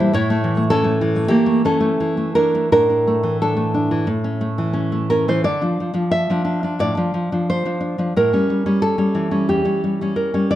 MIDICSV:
0, 0, Header, 1, 2, 480
1, 0, Start_track
1, 0, Key_signature, -1, "minor"
1, 0, Tempo, 593472
1, 89, Time_signature, 4, 2, 24, 8
1, 571, Tempo, 641026
1, 1531, Tempo, 687285
1, 4411, Tempo, 672646
1, 6811, Tempo, 650759
1, 7607, End_track
2, 0, Start_track
2, 0, Title_t, "Nylon-string guitar"
2, 0, Program_c, 0, 24
2, 0, Note_on_c, 0, 52, 61
2, 0, Note_on_c, 0, 62, 64
2, 0, Note_on_c, 0, 64, 79
2, 0, Note_on_c, 0, 72, 87
2, 1, Note_on_c, 0, 55, 61
2, 90, Note_off_c, 0, 64, 0
2, 96, Note_off_c, 0, 72, 0
2, 99, Note_off_c, 0, 52, 0
2, 102, Note_off_c, 0, 62, 0
2, 104, Note_off_c, 0, 55, 0
2, 109, Note_on_c, 0, 45, 71
2, 116, Note_on_c, 0, 73, 104
2, 119, Note_on_c, 0, 64, 74
2, 243, Note_on_c, 0, 57, 59
2, 356, Note_on_c, 0, 52, 58
2, 452, Note_off_c, 0, 57, 0
2, 461, Note_on_c, 0, 57, 56
2, 553, Note_off_c, 0, 64, 0
2, 557, Note_off_c, 0, 52, 0
2, 566, Note_off_c, 0, 73, 0
2, 566, Note_on_c, 0, 52, 68
2, 568, Note_on_c, 0, 69, 114
2, 578, Note_on_c, 0, 61, 88
2, 665, Note_off_c, 0, 57, 0
2, 674, Note_on_c, 0, 57, 65
2, 792, Note_off_c, 0, 52, 0
2, 801, Note_on_c, 0, 52, 62
2, 902, Note_off_c, 0, 57, 0
2, 911, Note_on_c, 0, 57, 56
2, 997, Note_off_c, 0, 52, 0
2, 1000, Note_off_c, 0, 61, 0
2, 1003, Note_off_c, 0, 45, 0
2, 1003, Note_on_c, 0, 67, 99
2, 1006, Note_on_c, 0, 52, 59
2, 1018, Note_on_c, 0, 58, 66
2, 1021, Note_off_c, 0, 69, 0
2, 1128, Note_off_c, 0, 57, 0
2, 1137, Note_on_c, 0, 57, 63
2, 1254, Note_off_c, 0, 58, 0
2, 1254, Note_off_c, 0, 67, 0
2, 1268, Note_off_c, 0, 52, 0
2, 1276, Note_on_c, 0, 52, 54
2, 1280, Note_on_c, 0, 61, 72
2, 1282, Note_on_c, 0, 69, 91
2, 1385, Note_off_c, 0, 57, 0
2, 1394, Note_on_c, 0, 57, 56
2, 1533, Note_off_c, 0, 52, 0
2, 1541, Note_on_c, 0, 52, 58
2, 1652, Note_off_c, 0, 57, 0
2, 1660, Note_on_c, 0, 57, 51
2, 1740, Note_off_c, 0, 61, 0
2, 1749, Note_off_c, 0, 69, 0
2, 1779, Note_off_c, 0, 52, 0
2, 1784, Note_on_c, 0, 70, 86
2, 1788, Note_on_c, 0, 52, 53
2, 1794, Note_on_c, 0, 62, 60
2, 1913, Note_off_c, 0, 57, 0
2, 1921, Note_on_c, 0, 57, 56
2, 2009, Note_off_c, 0, 62, 0
2, 2011, Note_off_c, 0, 70, 0
2, 2022, Note_off_c, 0, 52, 0
2, 2028, Note_off_c, 0, 57, 0
2, 2042, Note_on_c, 0, 45, 71
2, 2044, Note_on_c, 0, 70, 102
2, 2046, Note_on_c, 0, 62, 83
2, 2155, Note_off_c, 0, 62, 0
2, 2164, Note_on_c, 0, 62, 51
2, 2289, Note_on_c, 0, 57, 60
2, 2401, Note_on_c, 0, 52, 52
2, 2493, Note_off_c, 0, 70, 0
2, 2524, Note_off_c, 0, 62, 0
2, 2529, Note_on_c, 0, 69, 81
2, 2533, Note_on_c, 0, 62, 65
2, 2625, Note_off_c, 0, 57, 0
2, 2633, Note_on_c, 0, 57, 54
2, 2749, Note_off_c, 0, 62, 0
2, 2757, Note_on_c, 0, 62, 56
2, 2865, Note_off_c, 0, 52, 0
2, 2874, Note_on_c, 0, 52, 57
2, 2962, Note_off_c, 0, 45, 0
2, 2983, Note_off_c, 0, 57, 0
2, 2984, Note_off_c, 0, 52, 0
2, 2985, Note_off_c, 0, 62, 0
2, 2985, Note_on_c, 0, 45, 65
2, 3106, Note_on_c, 0, 61, 53
2, 3222, Note_on_c, 0, 57, 56
2, 3342, Note_on_c, 0, 52, 57
2, 3440, Note_off_c, 0, 61, 0
2, 3449, Note_on_c, 0, 61, 58
2, 3571, Note_off_c, 0, 57, 0
2, 3579, Note_on_c, 0, 57, 53
2, 3674, Note_off_c, 0, 69, 0
2, 3701, Note_off_c, 0, 61, 0
2, 3704, Note_on_c, 0, 70, 89
2, 3709, Note_on_c, 0, 61, 48
2, 3818, Note_off_c, 0, 70, 0
2, 3823, Note_off_c, 0, 52, 0
2, 3832, Note_on_c, 0, 52, 61
2, 3835, Note_on_c, 0, 72, 87
2, 3910, Note_off_c, 0, 45, 0
2, 3940, Note_off_c, 0, 57, 0
2, 3941, Note_off_c, 0, 72, 0
2, 3942, Note_on_c, 0, 50, 58
2, 3944, Note_off_c, 0, 52, 0
2, 3944, Note_off_c, 0, 61, 0
2, 3944, Note_on_c, 0, 74, 87
2, 4056, Note_off_c, 0, 50, 0
2, 4064, Note_on_c, 0, 62, 44
2, 4067, Note_on_c, 0, 53, 44
2, 4187, Note_off_c, 0, 53, 0
2, 4195, Note_on_c, 0, 53, 43
2, 4280, Note_off_c, 0, 62, 0
2, 4284, Note_off_c, 0, 53, 0
2, 4288, Note_on_c, 0, 62, 53
2, 4292, Note_on_c, 0, 53, 46
2, 4396, Note_off_c, 0, 74, 0
2, 4413, Note_on_c, 0, 76, 89
2, 4535, Note_off_c, 0, 53, 0
2, 4541, Note_off_c, 0, 62, 0
2, 4544, Note_on_c, 0, 53, 50
2, 4550, Note_on_c, 0, 62, 54
2, 4641, Note_off_c, 0, 62, 0
2, 4650, Note_on_c, 0, 62, 53
2, 4772, Note_off_c, 0, 53, 0
2, 4780, Note_on_c, 0, 53, 40
2, 4781, Note_off_c, 0, 62, 0
2, 4789, Note_on_c, 0, 62, 47
2, 4866, Note_off_c, 0, 76, 0
2, 4897, Note_on_c, 0, 45, 50
2, 4903, Note_on_c, 0, 74, 85
2, 5008, Note_off_c, 0, 45, 0
2, 5015, Note_off_c, 0, 62, 0
2, 5018, Note_off_c, 0, 53, 0
2, 5025, Note_on_c, 0, 62, 54
2, 5026, Note_on_c, 0, 53, 45
2, 5135, Note_off_c, 0, 53, 0
2, 5143, Note_on_c, 0, 53, 44
2, 5266, Note_off_c, 0, 62, 0
2, 5267, Note_off_c, 0, 53, 0
2, 5275, Note_on_c, 0, 53, 40
2, 5275, Note_on_c, 0, 62, 44
2, 5364, Note_off_c, 0, 74, 0
2, 5399, Note_on_c, 0, 72, 86
2, 5504, Note_off_c, 0, 53, 0
2, 5506, Note_off_c, 0, 62, 0
2, 5512, Note_on_c, 0, 53, 42
2, 5516, Note_on_c, 0, 62, 45
2, 5611, Note_off_c, 0, 62, 0
2, 5619, Note_on_c, 0, 62, 45
2, 5738, Note_off_c, 0, 53, 0
2, 5743, Note_off_c, 0, 62, 0
2, 5746, Note_on_c, 0, 53, 46
2, 5752, Note_on_c, 0, 62, 48
2, 5845, Note_off_c, 0, 72, 0
2, 5847, Note_off_c, 0, 53, 0
2, 5850, Note_off_c, 0, 62, 0
2, 5876, Note_on_c, 0, 45, 57
2, 5880, Note_on_c, 0, 70, 92
2, 5979, Note_off_c, 0, 45, 0
2, 5996, Note_on_c, 0, 61, 46
2, 5998, Note_on_c, 0, 55, 44
2, 6105, Note_off_c, 0, 55, 0
2, 6114, Note_on_c, 0, 55, 48
2, 6220, Note_off_c, 0, 55, 0
2, 6221, Note_off_c, 0, 61, 0
2, 6229, Note_on_c, 0, 61, 53
2, 6230, Note_on_c, 0, 55, 48
2, 6325, Note_off_c, 0, 70, 0
2, 6343, Note_on_c, 0, 69, 97
2, 6448, Note_off_c, 0, 55, 0
2, 6451, Note_off_c, 0, 61, 0
2, 6458, Note_on_c, 0, 55, 45
2, 6459, Note_on_c, 0, 61, 51
2, 6577, Note_on_c, 0, 52, 46
2, 6687, Note_off_c, 0, 61, 0
2, 6688, Note_off_c, 0, 55, 0
2, 6695, Note_on_c, 0, 61, 44
2, 6697, Note_on_c, 0, 55, 45
2, 6799, Note_off_c, 0, 69, 0
2, 6819, Note_on_c, 0, 40, 45
2, 6822, Note_on_c, 0, 67, 75
2, 6929, Note_off_c, 0, 55, 0
2, 6933, Note_off_c, 0, 61, 0
2, 6935, Note_off_c, 0, 40, 0
2, 6938, Note_on_c, 0, 55, 49
2, 6942, Note_on_c, 0, 61, 46
2, 7070, Note_off_c, 0, 55, 0
2, 7079, Note_on_c, 0, 55, 47
2, 7199, Note_off_c, 0, 55, 0
2, 7205, Note_off_c, 0, 61, 0
2, 7208, Note_on_c, 0, 55, 45
2, 7214, Note_on_c, 0, 61, 47
2, 7282, Note_off_c, 0, 67, 0
2, 7300, Note_off_c, 0, 52, 0
2, 7317, Note_on_c, 0, 70, 74
2, 7440, Note_off_c, 0, 61, 0
2, 7441, Note_off_c, 0, 55, 0
2, 7449, Note_on_c, 0, 61, 46
2, 7450, Note_on_c, 0, 55, 47
2, 7534, Note_off_c, 0, 70, 0
2, 7572, Note_on_c, 0, 52, 47
2, 7572, Note_on_c, 0, 74, 82
2, 7607, Note_off_c, 0, 52, 0
2, 7607, Note_off_c, 0, 55, 0
2, 7607, Note_off_c, 0, 61, 0
2, 7607, Note_off_c, 0, 74, 0
2, 7607, End_track
0, 0, End_of_file